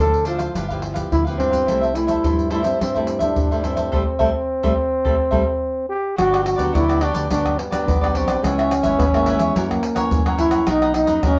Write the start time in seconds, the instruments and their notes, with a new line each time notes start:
0.00 fingered electric bass D2, nylon-string guitar A2, cavaquinho D4 A4 C5 F5, trombone A4
0.14 pandeiro, shaker
0.25 nylon-string guitar F3 C4 E4, cavaquinho D4 A4 C5 F5, trombone F4, pandeiro, shaker
0.38 cavaquinho A4 C5 F5, pandeiro, shaker
0.55 fingered electric bass G1, nylon-string guitar G2 F3 B3 E4, cavaquinho D4 G4 B4 F5, pandeiro, shaker, surdo
0.68 nylon-string guitar F3 B3 E4, cavaquinho G4 B4 F5, pandeiro, shaker, surdo
0.82 muted cavaquinho stroke, pandeiro
0.94 cavaquinho G4 B4 F5, pandeiro, shaker, surdo
1.12 fingered electric bass D2, nylon-string guitar D3, trombone E4, pandeiro, shaker, surdo
1.25 nylon-string guitar F3 B3, cavaquinho G4 B4 F5, pandeiro, shaker
1.29 nylon-string guitar E4
1.37 fingered electric bass G2, trombone C4, cavaquinho D4 G4 B4 F5, pandeiro, surdo
1.50 cavaquinho G4 B4 F5, pandeiro, shaker, surdo
1.67 fingered electric bass C2, nylon-string guitar C3 G3 A3 E4, cavaquinho E4 A4 C5 E5, pandeiro, shaker, surdo
1.81 cavaquinho A4 C5 E5, pandeiro, shaker
1.95 nylon-string guitar G3 A3 E4, trombone E4, muted cavaquinho stroke, pandeiro, shaker
2.07 cavaquinho A4 C5 E5, pandeiro, shaker, surdo
2.23 fingered electric bass G2, nylon-string guitar G2, cavaquinho E4 A4 C5 E5, pandeiro, shaker, surdo
2.39 pandeiro, shaker
2.50 nylon-string guitar G3 A3 E4, cavaquinho E4 A4 C5 E5, trombone E4, pandeiro
2.62 trombone C4, cavaquinho A4 C5 E5, pandeiro, shaker
2.79 fingered electric bass G2, nylon-string guitar C3, trombone C4, cavaquinho E4 A4 C5 E5, pandeiro, shaker, surdo
2.95 nylon-string guitar G3 A3 E4, cavaquinho A4 C5 E5, pandeiro, shaker, surdo
3.06 muted cavaquinho stroke, pandeiro, shaker
3.19 trombone D4, cavaquinho A4 C5 E5, pandeiro, shaker, surdo
3.36 fingered electric bass G2, nylon-string guitar G2, pandeiro, shaker, surdo
3.51 nylon-string guitar G3 A3 E4, cavaquinho A4 C5 E5, pandeiro, shaker
3.63 fingered electric bass G2, trombone C4, cavaquinho E4 A4 C5 E5, pandeiro, surdo
3.76 cavaquinho A4 C5 E5, pandeiro, shaker, surdo
3.92 fingered electric bass C2, nylon-string guitar G3 A3 C4, cavaquinho A4 C5 E5, surdo
4.19 fingered electric bass C2, nylon-string guitar G3 A3 C4, cavaquinho A4 C5 E5, surdo
4.63 fingered electric bass C2, nylon-string guitar G3 A3 C4, cavaquinho A4 C5 E5, surdo
5.05 fingered electric bass C2, nylon-string guitar G3 A3 C4, cavaquinho A4 C5 E5, surdo
5.31 fingered electric bass C2, nylon-string guitar G3 A3 C4, cavaquinho A4 C5 E5, surdo
5.89 trombone G4
6.16 fingered electric bass G1, nylon-string guitar G2 F#3 B3 D4, cavaquinho F#4 G4 B4 D5, trombone F#4, pandeiro, tamborim, shaker, surdo
6.31 cavaquinho G4 B4 D5, pandeiro, tamborim, shaker
6.44 trombone F#4, muted cavaquinho stroke, pandeiro, tamborim
6.56 fingered electric bass D2, nylon-string guitar F#3 B3 D4, cavaquinho G4 B4 D5, pandeiro, shaker, surdo
6.73 fingered electric bass D2, nylon-string guitar D3, trombone E4, cavaquinho F#4 G4 B4 D5, pandeiro, tamborim, shaker, surdo
6.88 nylon-string guitar F#3 B3 D4, cavaquinho G4 B4 D5, pandeiro, tamborim, shaker
7.01 trombone D4, cavaquinho F#4 G4 B4 D5, pandeiro, tamborim
7.14 fingered electric bass D2, cavaquinho G4 B4 D5, pandeiro, shaker
7.30 fingered electric bass D2, nylon-string guitar G2 F#3 B3 D4, trombone D4, cavaquinho F#4 G4 B4 D5, pandeiro, shaker, surdo
7.46 pandeiro, tamborim, shaker, surdo
7.58 trombone B3, muted cavaquinho stroke, pandeiro
7.71 nylon-string guitar F#3 B3 D4, cavaquinho G4 B4 D5, pandeiro, tamborim, shaker, surdo
7.87 fingered electric bass B1, nylon-string guitar D3, trombone B3, pandeiro, shaker, surdo
8.01 nylon-string guitar F#3 B3 D4, cavaquinho G4 B4 D5, pandeiro, tamborim, shaker
8.14 trombone C4, cavaquinho F#4 G4 B4 D5, pandeiro, surdo
8.27 cavaquinho G4 B4 D5, pandeiro, tamborim, shaker, surdo
8.42 fingered electric bass C#2, nylon-string guitar C#3 G#3 B3 E4, trombone C#4, cavaquinho E4 B4 C#5 E5, pandeiro, tamborim, shaker, surdo
8.58 cavaquinho B4 C#5 E5, pandeiro, tamborim, shaker
8.71 muted cavaquinho stroke, pandeiro, tamborim, shaker
8.83 fingered electric bass G#1, nylon-string guitar G#3 B3 E4, cavaquinho B4 C#5 E5, pandeiro, shaker, surdo
8.98 fingered electric bass G#1, nylon-string guitar G#2, trombone B3, cavaquinho E4 B4 C#5 E5, pandeiro, tamborim, shaker, surdo
9.14 nylon-string guitar G#3 B3 E4, trombone A#3, cavaquinho B4 C#5 E5, pandeiro, tamborim, shaker
9.26 cavaquinho E4 B4 C#5 E5, pandeiro, tamborim
9.39 fingered electric bass E2, trombone G#3, cavaquinho B4 C#5 E5, pandeiro, shaker
9.55 nylon-string guitar F#2 E3 A#3 C#4, fingered electric bass F#2, trombone F#3, cavaquinho E4 A#4 C#5 F#5, pandeiro, shaker, surdo
9.70 trombone A#3, pandeiro, tamborim, shaker, surdo
9.82 muted cavaquinho stroke, pandeiro
9.95 nylon-string guitar E3 A#3 C#4, cavaquinho A#4 C#5 F#5, pandeiro, tamborim, shaker, surdo
10.11 fingered electric bass F#2, nylon-string guitar C#3, pandeiro, shaker, surdo
10.26 nylon-string guitar E3 A#3 C#4, cavaquinho A#4 C#5 F#5, pandeiro, tamborim, shaker
10.38 cavaquinho E4 A#4 C#5 F#5, trombone E4, pandeiro, shaker, surdo
10.51 cavaquinho A#4 C#5 F#5, pandeiro, tamborim, shaker, surdo
10.66 fingered electric bass B1, nylon-string guitar B2 F#3 A#3 D#4, cavaquinho D#4 A#4 B4 D#5, trombone D#4, pandeiro, tamborim, shaker, surdo
10.82 cavaquinho A#4 B4 D#5, pandeiro, tamborim, shaker
10.94 trombone D#4, muted cavaquinho stroke, pandeiro, tamborim, shaker
11.06 fingered electric bass F#2, nylon-string guitar F#3 A#3 D#4, cavaquinho A#4 B4 D#5, pandeiro, shaker, surdo
11.23 fingered electric bass F#2, nylon-string guitar F#2, trombone C#4, cavaquinho D#4 A#4 B4 D#5, pandeiro, tamborim, shaker, surdo